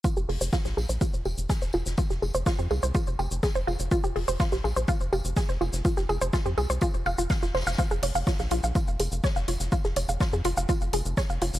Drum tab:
HH |----o---------------------------|--------------------------------|----o---------------------------|--------------------------------|
TB |x-------x---x---x---x---x---x---|x---x---x---x---x---x---x---x---|x-------x---x---x---x---x---x---|x---x---x---x---x---x---x---xxxx|
SH |x-x---x-x-x---x-x-x---x-x-x---x-|x-x---x-x-x---x-x-x---x-x-x---x-|x-x---x-x-x---x-x-x---x-x-x---x-|x-x---x-x-x---x-x-x---x-x-x---x-|
SD |--------o-o-------------o-o---o-|--o-----o---------------o-------|--------o-o-------------o-o---o-|--o-----o---------------o-o-oooo|
BD |o-------o-------o-------o-------|o-------o-------o-------o-------|o-------o-------o-------o-------|o-------o-------o-------o-------|

HH |----o-------o-------o-------o---|----o-------o-------o-------o---|
TB |x-------x---x---x---x---x---x---|x---x---x---x---x---x---x---x---|
SH |x-x---x-x-x---x-x-x---x-x-x---x-|x-x---x-x-x---x-x-x---x-x-x---x-|
SD |--------o-o-------------o-o---o-|--o-----o---------------o-------|
BD |o-------o-------o-------o-------|o-------o-------o-------o-------|